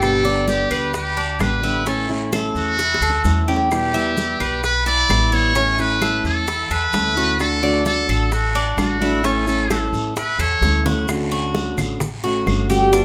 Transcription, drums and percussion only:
0.02 high bongo medium
0.02 high conga soft
0.02 long guiro medium
0.02 claves medium
0.02 maracas medium
0.25 high conga soft
0.48 high bongo medium
0.48 high conga medium
0.48 short guiro medium
0.48 maracas medium
0.71 high conga soft
0.71 short guiro medium
0.71 claves medium
0.71 maracas soft
0.94 high bongo medium
0.94 high conga soft
0.94 long guiro medium
0.94 maracas medium
1.18 high conga soft
1.40 high bongo medium
1.40 low bongo medium
1.40 high conga medium
1.40 short guiro medium
1.40 claves medium
1.40 maracas medium
1.63 short guiro medium
1.63 maracas soft
1.86 high bongo medium
1.86 high conga soft
1.86 long guiro medium
1.86 maracas medium
2.10 high bongo soft
2.10 high conga soft
2.32 high bongo medium
2.32 high conga loud
2.32 short guiro medium
2.32 claves medium
2.32 maracas medium
2.55 high bongo soft
2.55 high conga soft
2.55 short guiro medium
2.55 maracas soft
2.79 high bongo medium
2.79 high conga soft
2.79 long guiro medium
2.79 maracas medium
2.94 high bongo medium
3.02 high conga soft
3.02 claves medium
3.02 maracas medium
3.10 low bongo medium
3.24 low bongo medium
3.24 high conga medium
3.24 short guiro medium
3.24 maracas medium
3.48 short guiro medium
3.48 maracas soft
3.56 low bongo medium
3.71 high bongo medium
3.71 high conga soft
3.71 long guiro medium
3.71 claves medium
3.71 maracas medium
3.94 high conga soft
3.94 maracas medium
4.17 high bongo medium
4.17 high conga medium
4.17 short guiro medium
4.17 maracas medium
4.40 high conga soft
4.40 short guiro medium
4.40 claves medium
4.40 maracas soft
4.63 high bongo medium
4.63 high conga soft
4.63 long guiro medium
4.63 maracas medium
4.86 high conga soft
4.86 maracas medium
5.09 high bongo medium
5.09 low bongo medium
5.09 high conga medium
5.09 short guiro medium
5.09 claves medium
5.09 maracas medium
5.32 short guiro medium
5.32 maracas soft
5.55 high bongo medium
5.55 high conga soft
5.55 long guiro medium
5.55 maracas medium
5.78 high bongo soft
5.78 high conga soft
5.78 maracas medium
6.01 high bongo medium
6.01 high conga medium
6.01 short guiro medium
6.01 claves medium
6.01 maracas medium
6.25 high bongo soft
6.25 high conga soft
6.25 short guiro medium
6.25 maracas soft
6.47 high bongo medium
6.47 high conga soft
6.47 long guiro medium
6.47 maracas medium
6.70 high conga soft
6.70 claves medium
6.70 maracas medium
6.93 high bongo medium
6.93 low bongo medium
6.93 high conga medium
6.93 short guiro medium
6.93 maracas medium
7.17 high bongo soft
7.17 short guiro medium
7.17 maracas soft
7.39 high bongo medium
7.39 high conga soft
7.39 long guiro medium
7.39 claves medium
7.39 maracas medium
7.63 high conga soft
7.86 high bongo medium
7.86 high conga loud
7.86 short guiro medium
7.86 maracas medium
8.09 high conga soft
8.09 short guiro medium
8.09 claves medium
8.09 maracas soft
8.32 high bongo medium
8.32 high conga soft
8.32 long guiro medium
8.32 maracas medium
8.55 high conga soft
8.78 high bongo medium
8.78 low bongo medium
8.78 high conga medium
8.78 short guiro medium
8.78 claves medium
8.78 maracas medium
9.01 high conga medium
9.01 short guiro medium
9.01 maracas soft
9.24 high bongo medium
9.24 high conga soft
9.24 long guiro medium
9.24 maracas medium
9.47 high bongo soft
9.47 high conga soft
9.47 maracas medium
9.70 high bongo medium
9.70 high conga medium
9.70 short guiro medium
9.70 claves medium
9.70 maracas medium
9.94 high bongo soft
9.94 high conga soft
9.94 short guiro medium
9.94 maracas soft
10.16 high bongo medium
10.16 high conga soft
10.16 long guiro medium
10.16 maracas medium
10.39 high conga soft
10.39 claves medium
10.39 maracas medium
10.62 high bongo medium
10.62 high conga medium
10.62 short guiro medium
10.62 maracas medium
10.85 low bongo loud
10.85 low conga medium
10.85 short guiro medium
10.85 maracas soft
11.08 high bongo medium
11.08 high conga soft
11.08 long guiro medium
11.08 claves medium
11.08 maracas medium
11.32 high bongo soft
11.32 high conga soft
11.32 maracas soft
11.55 high bongo medium
11.55 high conga medium
11.55 short guiro medium
11.55 maracas soft
11.78 high conga soft
11.78 low conga medium
11.78 short guiro medium
11.78 claves medium
11.78 maracas medium
12.00 high bongo medium
12.00 high conga soft
12.00 low conga medium
12.00 long guiro medium
12.00 maracas medium
12.24 high bongo soft
12.24 high conga soft
12.24 maracas soft
12.47 high bongo soft
12.47 low bongo medium
12.47 high conga medium
12.47 short guiro medium
12.47 claves medium
12.47 maracas soft
12.70 high bongo soft
12.70 high conga medium
12.70 short guiro medium
12.70 maracas medium
12.93 high bongo medium
12.93 long guiro medium
12.93 maracas medium

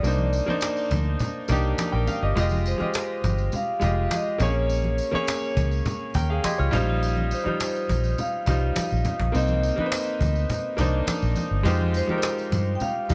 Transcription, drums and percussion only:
0.04 tambourine soft
0.18 high conga medium
0.33 tambourine medium
0.48 high conga medium
0.61 cajon slap loud
0.61 tambourine medium
0.77 tambourine soft
0.91 cajon bass medium
0.91 tambourine soft
0.91 high conga medium
1.06 cajon slap soft
1.19 cajon bass medium
1.19 tambourine soft
1.19 muted conga soft
1.19 low conga medium
1.48 cajon bass medium
1.48 tambourine soft
1.48 muted conga soft
1.48 high conga soft
1.78 cajon slap loud
1.78 tambourine medium
1.78 muted conga soft
1.78 high conga medium
2.07 tambourine medium
2.07 high conga medium
2.07 low conga medium
2.37 cajon bass loud
2.37 tambourine medium
2.37 muted conga soft
2.49 tambourine soft
2.49 high conga medium
2.66 cajon slap soft
2.66 tambourine soft
2.81 high conga medium
2.94 cajon slap loud
2.94 tambourine medium
3.24 cajon bass medium
3.24 tambourine soft
3.24 muted conga soft
3.24 high conga medium
3.38 cajon slap soft
3.38 tambourine soft
3.52 cajon slap soft
3.52 tambourine soft
3.52 muted conga soft
3.52 low conga medium
3.81 cajon bass medium
3.81 tambourine medium
3.81 muted conga soft
3.81 high conga soft
4.11 cajon slap loud
4.11 tambourine medium
4.11 muted conga soft
4.11 high conga medium
4.40 cajon bass loud
4.40 cajon slap soft
4.40 tambourine soft
4.40 high conga medium
4.40 low conga medium
4.69 cajon slap medium
4.69 tambourine medium
4.84 high conga medium
4.98 cajon slap soft
4.98 tambourine medium
5.12 high conga medium
5.27 cajon slap loud
5.27 tambourine medium
5.27 muted conga soft
5.57 cajon bass medium
5.57 tambourine soft
5.57 muted conga soft
5.57 high conga medium
5.71 cajon slap soft
5.71 tambourine soft
5.85 cajon bass medium
5.85 tambourine soft
5.85 low conga medium
6.14 cajon bass medium
6.14 tambourine medium
6.14 high conga soft
6.44 cajon slap loud
6.44 tambourine medium
6.44 muted conga soft
6.44 high conga medium
6.73 cajon bass loud
6.73 cajon slap soft
6.73 tambourine medium
6.73 muted conga soft
6.73 high conga medium
6.73 low conga medium
7.02 cajon slap medium
7.02 tambourine soft
7.02 muted conga soft
7.17 high conga medium
7.31 cajon slap soft
7.31 tambourine medium
7.31 muted conga soft
7.46 high conga medium
7.60 cajon slap loud
7.60 tambourine medium
7.76 tambourine soft
7.89 cajon bass medium
7.89 tambourine soft
7.89 high conga medium
8.04 cajon slap soft
8.04 tambourine soft
8.18 cajon slap soft
8.18 tambourine soft
8.18 low conga medium
8.46 cajon bass medium
8.46 tambourine soft
8.46 muted conga soft
8.46 high conga soft
8.76 cajon slap loud
8.76 tambourine medium
8.76 muted conga soft
8.76 high conga medium
8.91 tambourine soft
9.05 cajon bass medium
9.05 cajon slap soft
9.05 tambourine soft
9.05 muted conga soft
9.05 high conga medium
9.05 low conga medium
9.20 cajon bass loud
9.34 cajon slap medium
9.34 tambourine soft
9.34 muted conga soft
9.48 tambourine soft
9.48 high conga medium
9.63 cajon slap soft
9.63 tambourine medium
9.63 muted conga soft
9.78 high conga medium
9.92 cajon slap loud
9.92 tambourine medium
9.92 muted conga soft
10.21 cajon bass medium
10.21 tambourine soft
10.21 high conga medium
10.35 cajon slap soft
10.35 tambourine soft
10.49 cajon bass medium
10.49 tambourine soft
10.49 muted conga soft
10.49 low conga medium
10.78 cajon bass medium
10.78 tambourine soft
10.78 muted conga soft
10.78 high conga soft
11.07 cajon slap loud
11.07 tambourine medium
11.07 muted conga soft
11.07 high conga medium
11.22 tambourine soft
11.36 cajon slap soft
11.36 tambourine soft
11.36 muted conga soft
11.36 high conga medium
11.36 low conga medium
11.65 cajon bass loud
11.65 tambourine medium
11.81 high conga medium
11.94 cajon slap soft
11.94 tambourine medium
11.94 muted conga soft
12.09 high conga medium
12.22 cajon slap loud
12.22 tambourine medium
12.22 muted conga soft
12.38 tambourine soft
12.52 cajon bass medium
12.52 tambourine soft
12.52 muted conga soft
12.52 high conga medium
12.67 cajon slap soft
12.80 cajon slap soft
12.80 tambourine soft
12.80 low conga medium
13.09 cajon bass medium
13.09 tambourine medium
13.09 high conga soft

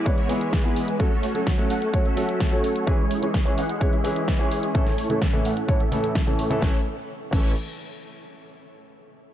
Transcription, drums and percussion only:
0.06 kick loud
0.06 closed hi-hat medium
0.18 closed hi-hat soft
0.29 open hi-hat loud
0.41 closed hi-hat medium
0.53 kick loud
0.53 snare loud
0.53 closed hi-hat medium
0.76 open hi-hat loud
0.88 closed hi-hat soft
1.00 kick loud
1.00 closed hi-hat medium
1.23 open hi-hat loud
1.35 closed hi-hat soft
1.47 kick loud
1.47 snare loud
1.47 closed hi-hat medium
1.58 closed hi-hat soft
1.70 open hi-hat loud
1.82 closed hi-hat soft
1.94 kick loud
1.94 closed hi-hat medium
2.05 closed hi-hat soft
2.17 open hi-hat loud
2.29 closed hi-hat medium
2.40 kick loud
2.40 snare loud
2.40 closed hi-hat medium
2.64 open hi-hat medium
2.76 closed hi-hat soft
2.87 kick loud
2.87 closed hi-hat medium
3.11 open hi-hat loud
3.23 closed hi-hat medium
3.34 kick loud
3.34 snare loud
3.34 closed hi-hat medium
3.46 closed hi-hat soft
3.58 open hi-hat loud
3.69 closed hi-hat medium
3.81 kick loud
3.81 closed hi-hat medium
3.93 closed hi-hat soft
4.05 open hi-hat loud
4.16 closed hi-hat medium
4.28 kick loud
4.28 snare loud
4.28 closed hi-hat medium
4.51 open hi-hat medium
4.63 closed hi-hat medium
4.75 kick loud
4.75 closed hi-hat medium
4.87 snare soft
4.87 closed hi-hat soft
4.98 open hi-hat loud
5.10 closed hi-hat medium
5.22 kick loud
5.22 snare loud
5.22 closed hi-hat medium
5.33 closed hi-hat soft
5.45 open hi-hat medium
5.57 closed hi-hat medium
5.69 kick loud
5.69 closed hi-hat medium
5.80 closed hi-hat soft
5.92 open hi-hat loud
6.04 closed hi-hat medium
6.15 kick loud
6.15 snare loud
6.15 closed hi-hat medium
6.27 closed hi-hat soft
6.39 open hi-hat loud
6.51 closed hi-hat medium
6.62 kick loud
6.62 snare medium
7.33 kick loud
7.33 crash medium

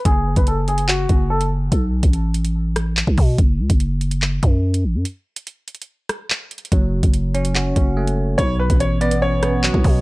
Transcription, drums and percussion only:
0.05 kick loud
0.05 closed hi-hat medium
0.36 kick loud
0.36 closed hi-hat medium
0.47 closed hi-hat medium
0.68 closed hi-hat medium
0.78 closed hi-hat medium
0.88 clap loud
1.09 kick medium
1.09 closed hi-hat medium
1.41 closed hi-hat medium
1.72 kick loud
1.72 closed hi-hat medium
2.03 kick loud
2.03 closed hi-hat medium
2.13 closed hi-hat medium
2.34 closed hi-hat medium
2.45 closed hi-hat medium
2.76 cross-stick loud
2.76 closed hi-hat medium
2.97 clap loud
3.07 kick loud
3.18 kick loud
3.18 open hi-hat medium
3.38 kick loud
3.38 closed hi-hat medium
3.70 kick medium
3.70 closed hi-hat medium
3.80 closed hi-hat medium
4.01 closed hi-hat medium
4.11 closed hi-hat medium
4.22 clap loud
4.43 kick medium
4.43 closed hi-hat medium
4.74 closed hi-hat medium
5.05 closed hi-hat medium
5.36 closed hi-hat medium
5.47 closed hi-hat medium
5.68 closed hi-hat medium
5.75 closed hi-hat medium
5.82 closed hi-hat medium
6.09 cross-stick loud
6.09 closed hi-hat medium
6.30 clap loud
6.51 closed hi-hat medium
6.51 open hi-hat soft
6.58 closed hi-hat medium
6.65 closed hi-hat medium
6.72 kick loud
6.72 closed hi-hat medium
7.03 kick medium
7.03 closed hi-hat medium
7.14 closed hi-hat medium
7.35 closed hi-hat medium
7.45 closed hi-hat medium
7.55 clap loud
7.76 kick medium
7.76 closed hi-hat medium
8.07 closed hi-hat medium
8.39 kick loud
8.39 closed hi-hat medium
8.70 kick medium
8.70 closed hi-hat medium
8.80 closed hi-hat medium
9.01 closed hi-hat medium
9.11 closed hi-hat medium
9.43 cross-stick loud
9.43 closed hi-hat medium
9.64 clap loud
9.74 kick medium
9.84 kick loud
9.84 open hi-hat soft

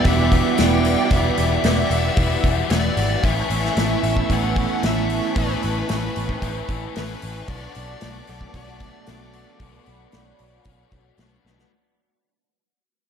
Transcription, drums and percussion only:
0.05 kick medium
0.05 open hi-hat medium
0.32 kick medium
0.32 open hi-hat medium
0.58 snare loud
0.58 open hi-hat medium
0.85 open hi-hat medium
1.11 kick loud
1.11 open hi-hat medium
1.38 open hi-hat medium
1.64 snare loud
1.64 open hi-hat medium
1.91 open hi-hat medium
2.17 kick loud
2.17 open hi-hat medium
2.44 kick medium
2.44 open hi-hat medium
2.70 snare loud
2.70 open hi-hat medium
2.97 open hi-hat medium
3.24 kick loud
3.24 open hi-hat medium
3.50 open hi-hat medium
3.65 snare soft
3.77 snare loud
3.77 open hi-hat medium
4.04 open hi-hat medium
4.17 kick medium
4.30 kick medium
4.30 open hi-hat medium
4.56 kick medium
4.56 open hi-hat soft
4.83 snare loud
4.83 open hi-hat medium
5.10 open hi-hat soft
5.36 kick loud
5.36 open hi-hat medium
5.63 open hi-hat soft
5.89 snare loud
5.89 open hi-hat medium
6.16 open hi-hat soft
6.29 kick medium
6.42 kick medium
6.42 open hi-hat medium
6.69 kick medium
6.69 open hi-hat soft
6.96 snare medium
6.96 open hi-hat medium
7.22 open hi-hat medium
7.48 kick loud
7.48 open hi-hat medium
7.75 open hi-hat medium
8.01 snare loud
8.01 open hi-hat medium
8.27 open hi-hat soft
8.41 kick medium
8.54 kick medium
8.54 open hi-hat medium
8.80 kick medium
8.80 open hi-hat soft
9.07 snare loud
9.07 open hi-hat medium
9.33 open hi-hat medium
9.60 kick loud
9.60 open hi-hat medium
9.86 open hi-hat soft
10.12 snare medium
10.12 open hi-hat medium
10.39 open hi-hat soft
10.65 kick medium
10.65 open hi-hat medium
10.92 kick medium
10.92 open hi-hat soft
11.18 snare loud
11.18 open hi-hat medium
11.46 snare medium
11.59 snare medium

